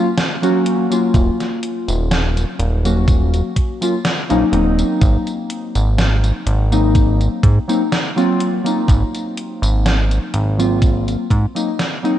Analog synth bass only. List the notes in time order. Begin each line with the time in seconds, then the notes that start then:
1.14 D#1
1.88 D#1
2.59 D#1
4.30 A#1
4.53 D#1
5.01 G#1
5.75 G#1
6.46 G#1
7.43 G#2
8.88 G#1
9.62 G#1
10.34 G#1
11.30 G#2